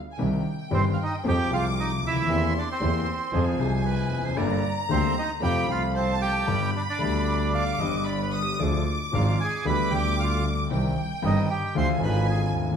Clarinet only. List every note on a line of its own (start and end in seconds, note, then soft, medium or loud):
3.34 3.61 G#4 medium
3.60 3.85 C5 medium
3.85 4.27 B4 loud
4.25 4.39 C5 loud
4.37 4.77 D5 loud
7.54 7.82 F5 loud
7.80 8.08 D#5 medium
8.07 8.22 D5 medium
8.23 8.44 B4 medium
8.43 8.61 G4 medium
8.60 9.00 F4 medium